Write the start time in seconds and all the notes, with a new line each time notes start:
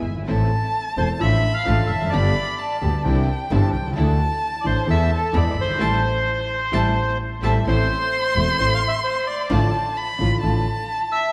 0.04 G1
0.10 F#1
0.15 G1
0.22 G#1
0.27 A1 A2 E3 A3 C4 E4 A4 A5
0.96 E1 E2 E3 A3 C4 E4 A4 C5
1.19 A1 A2 F3 A3 D4 F4 A4 E5 B5
1.54 F5
1.65 A1 A2 F3 A3 D4 F4 A4 A5
1.86 F1 E5
1.95 E2
2.02 F2
2.06 F#2 D5
2.11 G1 G2 D3 G3 B3 D4 G4 B5
2.59 A5
2.81 D2 D3 G3 B3 D4 G4
3.04 C2 C3 E3 C4 D4 E4 G4 G5
3.51 G1 G2 E3 C4 D4 E4 G4 A5
3.74 C2 G5
3.81 B1
3.87 C2
3.92 C#2
3.96 D2 D3 E3 A3 D4 E4 A4 A5
4.61 A1 A2 E3 A3 D4 A4 D5
4.65 A1 A3 D4 E4 C5
4.86 E2 E3 A3 B3 E4 A4 A5
4.91 E5
5.15 A4
5.32 E2 E3 G#3 B3 E4 G#4 B5
5.37 D5
5.50 D5
5.57 G1
5.61 F#1 C5
5.68 G1
5.75 G#1 E4 G4
5.79 A1 E3 G3 A3 C4 E4 A4 A5
6.72 A1 E3 G3 A3 C4 E4 G4 A4 A5
7.42 A1 E3 G3 A3 C4 E4 G4 A4 E5 A5
7.65 A1 A2 E3 A3 C4 E4 A4 C5 C6
8.36 E1 E2 E3 A3 C4 E4 A4
8.59 A1 A2 E3 A3 C4 E4 A4 C5
8.74 F5
8.88 E5
9.04 C5
9.27 D5
9.50 A1 A2 D3 F3 A3 D4 F4 A5
9.97 B5
10.18 A1 A2 D3 F3 A3 D4 F4
10.41 A1 A2 D3 F3 A3 D4 F4 A5
11.12 E5